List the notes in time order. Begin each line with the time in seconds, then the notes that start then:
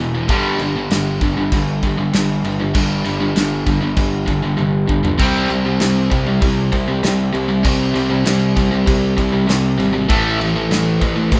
Already playing: E2 B2 E3
0.00 E1
0.13 E2 B2
0.28 G1 G2 D3 G3, kick, crash
0.59 G1 G2 D3, crash
0.75 G2 D3
0.90 G1 G2 D3, snare, crash
1.21 G1 G2 D3, kick, crash
1.37 G2 D3
1.52 G1 G2 D3, kick, crash
1.83 G1 G2 D3, kick, crash
1.98 G2 D3
2.13 G1 G2 D3, snare, crash
2.44 G1 G2 D3, crash
2.59 G2 D3
2.75 G1 G2 D3 G3, kick, crash
3.05 G1 G2 D3, crash
3.21 G2 D3
3.36 G1 G2 D3, snare, crash
3.66 G1 G2 D3, kick, crash
3.83 G2 D3
3.96 G1 G2 D3, kick, crash
4.27 G1 G2 D3, kick, crash
4.43 G2 D3
4.58 G1 G2 D3, high tom
4.89 G1 G2 D3, kick
5.05 G2 D3, floor tom
5.19 C2 C3 G3 C4 G4 D5 E5, kick, splash, crash
5.50 C2 C3 G3, crash
5.66 C3 G3
5.80 C2 C3 G3, snare, crash
6.11 C2 C3 G3, kick, crash
6.26 C3 G3
6.42 C2 C3 G3, kick, crash
6.72 C2 C3 G3, kick, crash
6.88 C3 G3
7.03 C2 C3 G3, snare, crash
7.34 C2 C3 G3, crash
7.50 C3 G3
7.65 C2 C3 G3 C4, kick, crash
7.95 C2 C3 G3, crash
8.10 C3 G3
8.25 C2 C3 G3, snare, crash
8.56 C2 C3 G3, kick, crash
8.72 C3 G3
8.87 C2 C3 G3, kick, crash
9.18 C2 C3 G3, kick, crash
9.32 C3 G3
9.48 C2 C3 G3, snare, crash
9.79 G#1 C3 G3, crash
9.94 C3 G3
10.09 A1 A2 E3 A3 E4 B4 C5, kick, crash
10.40 A1 A2 E3, crash
10.56 A2 E3
10.69 A1 A2 E3, snare, crash
11.00 A1 A2 E3, kick, crash
11.16 A2 E3
11.31 A1 A2 E3, kick, crash